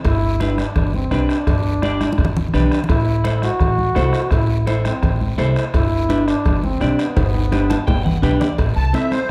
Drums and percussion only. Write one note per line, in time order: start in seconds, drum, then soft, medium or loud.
0.05 bombo low medium
0.05 bombo rim medium
0.05 cowbell loud
0.05 high conga soft
0.05 long guiro medium
0.23 high conga soft
0.40 bombo rim medium
0.40 high conga medium
0.40 short guiro medium
0.58 bombo rim medium
0.58 high conga medium
0.58 short guiro medium
0.76 bombo low medium
0.76 bombo rim medium
0.76 cowbell medium
0.76 low conga medium
0.76 long guiro medium
0.94 high conga medium
1.11 bombo rim medium
1.11 high conga medium
1.11 short guiro medium
1.29 bombo rim medium
1.29 short guiro medium
1.47 bombo low medium
1.47 bombo rim medium
1.47 cowbell loud
1.47 high conga soft
1.47 low conga medium
1.47 long guiro medium
1.66 high conga soft
1.82 bombo rim medium
1.82 high conga medium
1.82 short guiro medium
2.01 bombo rim medium
2.01 high conga medium
2.01 short guiro medium
2.12 high conga medium
2.18 bombo low medium
2.18 bombo rim medium
2.18 cowbell medium
2.18 long guiro medium
2.25 low conga loud
2.37 low conga loud
2.48 low conga medium
2.54 bombo rim medium
2.54 short guiro medium
2.60 low conga medium
2.72 bombo rim medium
2.72 low conga medium
2.72 short guiro medium
2.84 low conga medium
2.89 bombo low medium
2.89 bombo rim medium
2.89 cowbell loud
2.89 high conga soft
2.89 long guiro medium
3.07 high conga soft
3.24 bombo rim medium
3.24 high conga medium
3.24 short guiro medium
3.42 bombo rim medium
3.42 high conga medium
3.42 short guiro medium
3.60 bombo low medium
3.60 bombo rim medium
3.60 cowbell medium
3.60 low conga medium
3.60 long guiro medium
3.78 high conga medium
3.95 bombo rim medium
3.95 high conga medium
3.95 low timbale medium
3.95 short guiro medium
4.13 bombo rim medium
4.13 short guiro medium
4.31 bombo low medium
4.31 bombo rim medium
4.31 cowbell loud
4.31 high conga soft
4.31 long guiro medium
4.49 high conga soft
4.67 bombo rim medium
4.67 high conga medium
4.67 short guiro medium
4.85 bombo rim medium
4.85 high conga medium
4.85 short guiro medium
5.03 bombo low medium
5.03 bombo rim medium
5.03 cowbell medium
5.03 low conga medium
5.03 long guiro medium
5.21 high conga medium
5.39 bombo rim medium
5.39 high conga medium
5.39 low timbale medium
5.39 short guiro medium
5.56 bombo rim medium
5.56 short guiro medium
5.74 bombo low medium
5.74 bombo rim medium
5.74 cowbell loud
5.74 high conga soft
5.74 long guiro medium
5.92 high conga soft
6.10 bombo rim medium
6.10 high conga medium
6.10 short guiro medium
6.28 bombo rim medium
6.28 short guiro medium
6.46 bombo low medium
6.46 bombo rim medium
6.46 cowbell medium
6.46 low conga medium
6.46 long guiro medium
6.64 high conga medium
6.81 bombo rim medium
6.81 high conga medium
6.81 short guiro medium
6.99 bombo rim medium
6.99 short guiro medium
7.17 bombo low loud
7.17 bombo rim medium
7.17 cowbell loud
7.17 high conga soft
7.17 low conga medium
7.17 high timbale medium
7.17 long guiro medium
7.34 high conga soft
7.34 high timbale medium
7.52 bombo rim medium
7.52 high conga medium
7.52 high timbale medium
7.52 short guiro medium
7.70 bombo rim medium
7.70 high conga loud
7.70 short guiro medium
7.87 bombo low medium
7.87 bombo rim medium
7.87 cowbell medium
7.87 high conga loud
7.87 low timbale medium
7.87 long guiro medium
8.06 low conga loud
8.23 bombo low medium
8.23 bombo rim medium
8.23 low conga medium
8.23 short guiro medium
8.41 bombo rim medium
8.41 low conga medium
8.41 low timbale medium
8.41 short guiro medium
8.58 bombo low medium
8.58 bombo rim medium
8.58 cowbell loud
8.58 high conga soft
8.58 long guiro medium
8.77 high conga soft
8.94 bombo rim medium
8.94 high conga medium
8.94 short guiro medium
9.12 bombo rim medium
9.12 high conga medium
9.12 short guiro medium